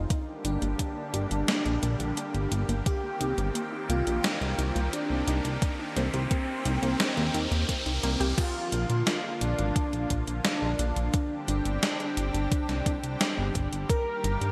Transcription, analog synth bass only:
0.45 G1
0.62 G1
1.14 G1
1.31 G1
1.65 A#1
1.83 A#1
2.00 A#1
2.34 G1
2.51 G1
2.69 G1
3.21 C2
3.38 G1
3.89 C2
4.07 A#1
4.41 C2
4.58 C2
4.76 C2
5.10 C2
5.27 C2
5.45 C2
5.96 C2
6.14 C2
6.65 C2
6.82 C2
7.17 D#2
7.34 D#2
7.52 D#2
7.86 C2
8.03 C2
8.20 C2
8.72 A#1
8.90 A#2
9.41 A#1
9.59 G#1
9.93 A#1
10.10 A#1
10.28 A#1
10.62 A#1
10.79 A#1
10.96 A#1
11.48 G1
11.66 G1
12.17 G1
12.34 G1
12.69 C2
12.86 C2
13.03 C2
13.38 G1
13.55 G1
13.72 G1
14.24 G1
14.41 G2

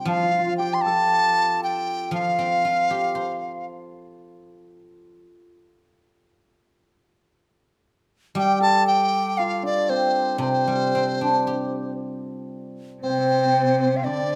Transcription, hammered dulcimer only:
Already playing: C4 D4 G4
0.08 F4
0.17 F4
0.23 F4
0.31 F4
0.39 F4
0.47 F4
0.59 G4
0.86 A4
2.15 F4
8.37 G4
8.60 A4
9.39 F4
9.63 D4
9.89 C4
10.41 C4
13.03 C4
13.10 C4
13.18 C4
13.25 C4
13.31 C4
13.38 C4
13.45 C4
13.53 C4
13.62 C4
13.72 C4
13.78 C4
13.86 C4
13.94 C4
14.06 D4

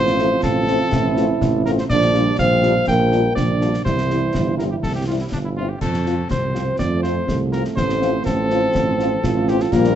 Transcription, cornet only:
Already playing: C5
0.43 A4
1.65 A#4
1.79 C5
1.90 D5
2.39 F5
2.88 G5
3.35 D5
3.84 C5
4.58 A#4
4.70 G4
4.83 A4
4.95 G4
5.07 F4
5.20 E4
5.32 D4
5.44 E4
5.56 F4
5.69 G4
5.81 A4
6.31 C5
6.79 D5
7.03 C5
7.52 A#4
7.76 C5
8.25 A4
9.49 G4
9.62 A4
9.72 A#4

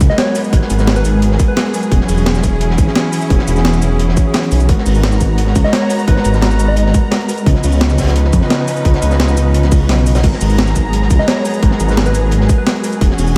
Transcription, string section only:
Already playing: F#3 B3 G#4
1.92 C#4 E4
4.69 G#3 B3 F#4 A#5
7.46 F3 C#4 D#4 B4
10.24 F#3 B3 G#4 A#5
13.01 E3 C#4 F#4

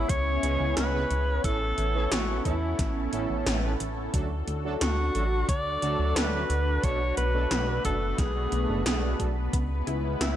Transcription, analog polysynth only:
0.43 C#3 G#3 B3 C#4 E4 G#4
0.94 C#3 G#3 B3 C#4 E4 B4
1.44 A2 A3 B3 C#4 E4 A4
1.95 A2 A3 B3 C#4 E4 A4
2.45 A2 A3 B3 C#4 E4 A4
3.13 A2 A3 B3 C#4 E4 A4
3.63 A2 A3 B3 C#4 E4 B4
4.14 F#3 A3 D4 F#4 A4
4.64 F#3 A3 D4 F#4 A4
5.15 F#3 A3 D4 F#4 A4
5.82 F#3 A3 D4 F#4 A4
6.33 F#3 A3 D4 F#4 B4
6.83 B2 A3 B3 D4 F#4 A4
7.34 B2 A3 B3 D4 F#4 A4
7.85 B2 A3 B3 D4 F#4 A4
8.69 B2 A3 B3 D4 F#4 A4
8.86 B2 A3 B3 D4 F#4 A4
9.19 A3 B3 D4 F#4 A4

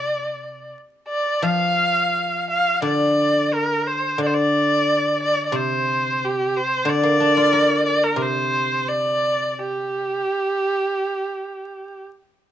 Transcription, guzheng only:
Already playing: C3
1.42 F3
2.82 D3
4.18 D3
5.52 C3
6.85 D3
7.03 A#3
7.20 D4
7.37 F4
7.53 A#4
8.16 C3

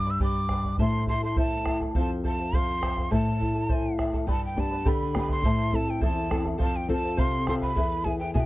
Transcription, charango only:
0.06 B4 D5 B5
0.20 G4 B4 D5 G5 B5
0.51 B4 D5 G5 B5
0.65 B4 D5 B5
0.79 E4 A4 C5 E5 A5
1.08 E4 A4 E5 A5
1.22 E4 A4 A5
1.37 E4 A4 C5 E5 A5
1.66 E4 A4 E5 A5
1.80 E4 A4 A5
1.95 A4 C5 F5
2.24 A4 C5 F5
2.39 C5 F5
2.54 A4 C5 F5
2.82 A4 C5 F5
2.96 C5 F5
3.11 E4 A4 C5 E5 A5
3.40 E4 A4 E5 A5
3.55 E4 A4 A5
3.69 E4 A4 C5 E5 A5
3.98 E4 A4 E5 A5
4.13 E4 A4 A5
4.27 G4 B4 D5 G5 B5
4.56 B4 D5 G5 B5
4.71 B4 D5 B5
4.85 G4 B4 D5 G5 B5
5.14 B4 D5 G5 B5
5.28 B4 D5 B5
5.44 E4 A4 C5 E5 A5
5.72 E4 A4 E5 A5
5.87 E4 A4 A5
6.01 E4 A4 C5 E5 A5
6.29 E4 A4 E5 A5
6.44 E4 A4 A5
6.58 A4 C5 F5
6.89 A4 C5 F5
7.03 C5 F5
7.17 A4 C5 F5
7.46 A4 C5 F5
7.62 C5 F5
7.76 E4 G#4 B4 E5 G#5
8.05 E4 B4 E5 G#5
8.20 E4 B4 G#5
8.34 E4 G#4 B4 E5 G#5

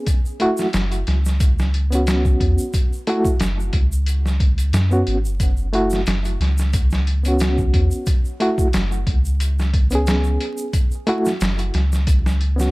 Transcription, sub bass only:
0.74 F#1
1.07 C#2
2.41 E2
3.40 F#1
3.74 C#2
4.73 F#2
5.07 G#1
5.25 F#1
6.07 F#1
6.40 C#2
7.74 E2
8.74 F#1
9.08 C#2
11.41 F#1
11.74 C#2

